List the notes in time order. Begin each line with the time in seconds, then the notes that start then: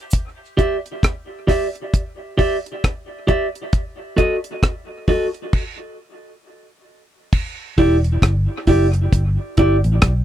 0.11 kick, closed hi-hat, cabasa
0.57 G4 D5 E5, kick, closed hi-hat
0.86 closed hi-hat
1.03 kick, cross-stick, closed hi-hat
1.47 G4 D5 E5, kick, cross-stick, open hi-hat
1.75 closed hi-hat
1.94 kick, closed hi-hat
2.38 G4 D5 E5, kick, open hi-hat
2.66 closed hi-hat
2.84 kick, cross-stick, closed hi-hat
3.27 G4 D5 E5, kick, closed hi-hat
3.55 closed hi-hat
3.73 kick, closed hi-hat
4.17 F#4 A4 D#5, kick, closed hi-hat
4.44 closed hi-hat
4.63 kick, cross-stick, closed hi-hat
5.08 F#4 A4 D#5, kick, open hi-hat
5.34 closed hi-hat
5.53 kick, crash
7.33 kick, crash
7.78 E1 E4 G4 D5, kick, open hi-hat
8.04 closed hi-hat
8.22 G1, kick, cross-stick, closed hi-hat
8.67 F#1 E4 G4 D5, kick, open hi-hat
8.94 closed hi-hat
9.13 G1, kick, closed hi-hat
9.57 G1 E4 G4 D5, kick, closed hi-hat
9.84 A1, closed hi-hat
10.02 kick, cross-stick, closed hi-hat